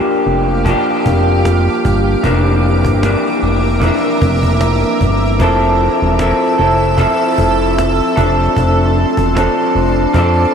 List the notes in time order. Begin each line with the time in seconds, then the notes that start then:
Already playing: F3 A#3 D4 G4 F5 D6
0.27 F1, cajon slap
0.65 F3 A#3 D4, cajon bass
0.69 G4
1.06 F1, cajon bass
1.45 cajon slap
1.67 cajon slap
1.85 G1, cajon bass
2.23 F1 F2 E3 A#3 D4 A#4 E5, cajon bass
2.63 cajon slap
2.85 G1, cajon bass
3.02 F2 E3 A#3 D4, cajon slap
3.42 F1, cajon slap
3.80 F2 E3 A#3, cajon bass
3.85 D4
4.22 F1, cajon bass
4.43 cajon bass
4.61 cajon slap
4.82 cajon slap
5.01 G1, cajon bass
5.39 F1 F3 C4 E4 A4 E5 E6, cajon bass
5.79 cajon slap
6.01 E1, cajon slap
6.18 F3 C4 E4 A4, cajon slap
6.58 F1 C4 E4 A4, cajon slap
6.97 F3 C4 E4 A4, cajon bass
7.38 F1, cajon bass
7.78 cajon slap
7.99 cajon slap
8.16 F1 F3 C4 D4 A4 D5 C6, cajon bass
8.56 F1, cajon bass
8.97 cajon slap
9.17 E1, cajon bass
9.35 F3 C4 D4 A4, cajon slap
9.75 F1 D6, cajon slap
10.13 F2 F3 C4 D4, cajon bass
10.18 A4